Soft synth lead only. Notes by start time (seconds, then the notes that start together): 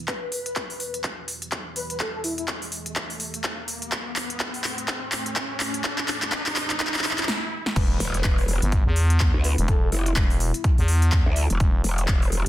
0.08 B4
0.22 B4
0.32 B4
1.76 B4
1.90 B4
2.00 A4
2.14 A4
2.24 E4
2.38 E4
7.76 B4
7.90 B4
8.00 B4
9.44 B4
9.58 B4
9.68 A4
9.82 A4
9.92 E4
10.06 E4